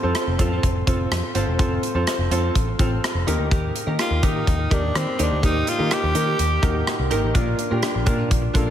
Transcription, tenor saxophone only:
0, 0, Header, 1, 2, 480
1, 0, Start_track
1, 0, Tempo, 480000
1, 1592, Time_signature, 4, 2, 24, 8
1, 8703, End_track
2, 0, Start_track
2, 0, Title_t, "Tenor saxophone"
2, 0, Program_c, 0, 66
2, 4006, Note_on_c, 0, 65, 82
2, 4248, Note_on_c, 0, 63, 80
2, 4263, Note_off_c, 0, 65, 0
2, 4731, Note_on_c, 0, 62, 80
2, 4746, Note_off_c, 0, 63, 0
2, 4974, Note_on_c, 0, 60, 80
2, 4989, Note_off_c, 0, 62, 0
2, 5203, Note_off_c, 0, 60, 0
2, 5220, Note_on_c, 0, 62, 81
2, 5430, Note_off_c, 0, 62, 0
2, 5452, Note_on_c, 0, 63, 92
2, 5689, Note_on_c, 0, 65, 87
2, 5704, Note_off_c, 0, 63, 0
2, 5930, Note_on_c, 0, 67, 90
2, 5945, Note_off_c, 0, 65, 0
2, 6881, Note_off_c, 0, 67, 0
2, 8703, End_track
0, 0, End_of_file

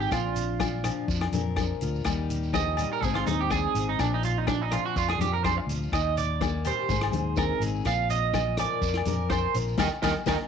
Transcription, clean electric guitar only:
0, 0, Header, 1, 3, 480
1, 0, Start_track
1, 0, Tempo, 483481
1, 119, Time_signature, 4, 2, 24, 8
1, 10403, End_track
2, 0, Start_track
2, 0, Title_t, "Clean electric guitar"
2, 0, Program_c, 0, 27
2, 4, Note_on_c, 0, 67, 85
2, 114, Note_off_c, 0, 67, 0
2, 118, Note_on_c, 0, 65, 59
2, 1041, Note_off_c, 0, 65, 0
2, 2525, Note_on_c, 0, 75, 85
2, 2867, Note_off_c, 0, 75, 0
2, 2905, Note_on_c, 0, 70, 75
2, 3008, Note_off_c, 0, 70, 0
2, 3008, Note_on_c, 0, 68, 81
2, 3131, Note_off_c, 0, 68, 0
2, 3131, Note_on_c, 0, 65, 84
2, 3239, Note_off_c, 0, 65, 0
2, 3243, Note_on_c, 0, 63, 93
2, 3368, Note_off_c, 0, 63, 0
2, 3382, Note_on_c, 0, 67, 90
2, 3487, Note_off_c, 0, 67, 0
2, 3491, Note_on_c, 0, 68, 94
2, 3832, Note_off_c, 0, 68, 0
2, 3864, Note_on_c, 0, 63, 83
2, 3969, Note_off_c, 0, 63, 0
2, 3983, Note_on_c, 0, 62, 68
2, 4099, Note_off_c, 0, 62, 0
2, 4112, Note_on_c, 0, 63, 89
2, 4213, Note_off_c, 0, 63, 0
2, 4218, Note_on_c, 0, 65, 91
2, 4347, Note_off_c, 0, 65, 0
2, 4347, Note_on_c, 0, 63, 71
2, 4441, Note_off_c, 0, 63, 0
2, 4445, Note_on_c, 0, 62, 84
2, 4581, Note_off_c, 0, 62, 0
2, 4581, Note_on_c, 0, 63, 85
2, 4688, Note_off_c, 0, 63, 0
2, 4694, Note_on_c, 0, 65, 84
2, 4815, Note_off_c, 0, 65, 0
2, 4822, Note_on_c, 0, 66, 104
2, 4929, Note_off_c, 0, 66, 0
2, 4939, Note_on_c, 0, 65, 89
2, 5055, Note_off_c, 0, 65, 0
2, 5059, Note_on_c, 0, 68, 97
2, 5167, Note_off_c, 0, 68, 0
2, 5175, Note_on_c, 0, 67, 103
2, 5293, Note_off_c, 0, 67, 0
2, 5297, Note_on_c, 0, 70, 85
2, 5399, Note_off_c, 0, 70, 0
2, 5403, Note_on_c, 0, 72, 74
2, 5530, Note_off_c, 0, 72, 0
2, 5892, Note_on_c, 0, 75, 75
2, 6123, Note_off_c, 0, 75, 0
2, 6133, Note_on_c, 0, 74, 78
2, 6577, Note_off_c, 0, 74, 0
2, 6622, Note_on_c, 0, 72, 93
2, 7294, Note_off_c, 0, 72, 0
2, 7329, Note_on_c, 0, 70, 77
2, 7561, Note_off_c, 0, 70, 0
2, 7811, Note_on_c, 0, 77, 94
2, 8041, Note_off_c, 0, 77, 0
2, 8047, Note_on_c, 0, 75, 95
2, 8491, Note_off_c, 0, 75, 0
2, 8535, Note_on_c, 0, 74, 90
2, 9208, Note_off_c, 0, 74, 0
2, 9235, Note_on_c, 0, 72, 84
2, 9470, Note_off_c, 0, 72, 0
2, 9720, Note_on_c, 0, 70, 76
2, 9724, Note_on_c, 0, 75, 74
2, 9729, Note_on_c, 0, 79, 70
2, 9803, Note_off_c, 0, 70, 0
2, 9803, Note_off_c, 0, 75, 0
2, 9803, Note_off_c, 0, 79, 0
2, 9955, Note_on_c, 0, 70, 101
2, 9957, Note_on_c, 0, 79, 78
2, 9958, Note_on_c, 0, 75, 94
2, 10038, Note_off_c, 0, 79, 0
2, 10039, Note_off_c, 0, 70, 0
2, 10040, Note_off_c, 0, 75, 0
2, 10200, Note_on_c, 0, 70, 101
2, 10205, Note_on_c, 0, 75, 82
2, 10208, Note_on_c, 0, 79, 87
2, 10282, Note_off_c, 0, 70, 0
2, 10282, Note_off_c, 0, 79, 0
2, 10283, Note_off_c, 0, 75, 0
2, 10403, End_track
3, 0, Start_track
3, 0, Title_t, "Muted clean electric guitar strokes"
3, 5538, Note_on_c, 9, 29, 88
3, 5637, Note_off_c, 9, 29, 0
3, 10403, End_track
0, 0, End_of_file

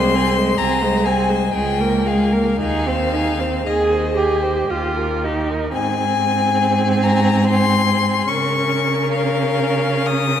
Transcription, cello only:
0, 0, Header, 1, 2, 480
1, 0, Start_track
1, 0, Key_signature, -4, "major"
1, 0, Tempo, 867052
1, 329, Tempo, 953895
1, 809, Tempo, 1045296
1, 1289, Time_signature, 3, 2, 24, 8
1, 2729, Tempo, 878477
1, 3209, Tempo, 840336
1, 4649, Tempo, 904977
1, 5323, End_track
2, 0, Start_track
2, 0, Title_t, "Cello"
2, 0, Program_c, 0, 42
2, 0, Note_on_c, 0, 36, 81
2, 270, Note_off_c, 0, 36, 0
2, 321, Note_on_c, 0, 36, 80
2, 746, Note_off_c, 0, 36, 0
2, 804, Note_on_c, 0, 37, 75
2, 1229, Note_off_c, 0, 37, 0
2, 1285, Note_on_c, 0, 39, 68
2, 1717, Note_off_c, 0, 39, 0
2, 1774, Note_on_c, 0, 39, 70
2, 2197, Note_off_c, 0, 39, 0
2, 2251, Note_on_c, 0, 39, 61
2, 2678, Note_off_c, 0, 39, 0
2, 2730, Note_on_c, 0, 44, 69
2, 4144, Note_off_c, 0, 44, 0
2, 4161, Note_on_c, 0, 49, 72
2, 5323, Note_off_c, 0, 49, 0
2, 5323, End_track
0, 0, End_of_file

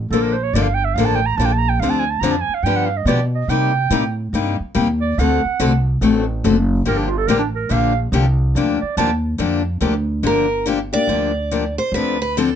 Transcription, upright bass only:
0, 0, Header, 1, 3, 480
1, 0, Start_track
1, 0, Key_signature, -2, "minor"
1, 0, Tempo, 422238
1, 127, Time_signature, 4, 2, 24, 8
1, 14273, End_track
2, 0, Start_track
2, 0, Title_t, "Upright bass"
2, 0, Program_c, 0, 32
2, 119, Note_on_c, 0, 34, 86
2, 588, Note_off_c, 0, 34, 0
2, 607, Note_on_c, 0, 31, 92
2, 1072, Note_off_c, 0, 31, 0
2, 1087, Note_on_c, 0, 33, 92
2, 1552, Note_off_c, 0, 33, 0
2, 1564, Note_on_c, 0, 34, 104
2, 2030, Note_off_c, 0, 34, 0
2, 2039, Note_on_c, 0, 38, 89
2, 2507, Note_off_c, 0, 38, 0
2, 2515, Note_on_c, 0, 41, 86
2, 2805, Note_off_c, 0, 41, 0
2, 2988, Note_on_c, 0, 43, 82
2, 3461, Note_off_c, 0, 43, 0
2, 3472, Note_on_c, 0, 47, 95
2, 3942, Note_off_c, 0, 47, 0
2, 3954, Note_on_c, 0, 48, 83
2, 4423, Note_off_c, 0, 48, 0
2, 4434, Note_on_c, 0, 45, 81
2, 4903, Note_off_c, 0, 45, 0
2, 4921, Note_on_c, 0, 43, 88
2, 5206, Note_off_c, 0, 43, 0
2, 5403, Note_on_c, 0, 39, 100
2, 5867, Note_off_c, 0, 39, 0
2, 5887, Note_on_c, 0, 38, 93
2, 6170, Note_off_c, 0, 38, 0
2, 6362, Note_on_c, 0, 36, 93
2, 6826, Note_off_c, 0, 36, 0
2, 6835, Note_on_c, 0, 33, 94
2, 7302, Note_off_c, 0, 33, 0
2, 7326, Note_on_c, 0, 30, 112
2, 7788, Note_off_c, 0, 30, 0
2, 7798, Note_on_c, 0, 31, 90
2, 8264, Note_off_c, 0, 31, 0
2, 8274, Note_on_c, 0, 33, 86
2, 8741, Note_off_c, 0, 33, 0
2, 8756, Note_on_c, 0, 34, 91
2, 9223, Note_off_c, 0, 34, 0
2, 9231, Note_on_c, 0, 36, 106
2, 9700, Note_off_c, 0, 36, 0
2, 9720, Note_on_c, 0, 38, 98
2, 10006, Note_off_c, 0, 38, 0
2, 10196, Note_on_c, 0, 39, 100
2, 10664, Note_off_c, 0, 39, 0
2, 10673, Note_on_c, 0, 41, 90
2, 11143, Note_off_c, 0, 41, 0
2, 11155, Note_on_c, 0, 38, 109
2, 11624, Note_off_c, 0, 38, 0
2, 11630, Note_on_c, 0, 31, 81
2, 12405, Note_off_c, 0, 31, 0
2, 12589, Note_on_c, 0, 38, 84
2, 13367, Note_off_c, 0, 38, 0
2, 13549, Note_on_c, 0, 38, 86
2, 14273, Note_off_c, 0, 38, 0
2, 14273, End_track
3, 0, Start_track
3, 0, Title_t, "Muted upright bass strokes"
3, 2828, Note_on_c, 9, 29, 36
3, 2942, Note_off_c, 9, 29, 0
3, 5231, Note_on_c, 9, 29, 43
3, 5345, Note_off_c, 9, 29, 0
3, 6192, Note_on_c, 9, 29, 42
3, 6306, Note_off_c, 9, 29, 0
3, 10032, Note_on_c, 9, 29, 48
3, 10146, Note_off_c, 9, 29, 0
3, 14273, End_track
0, 0, End_of_file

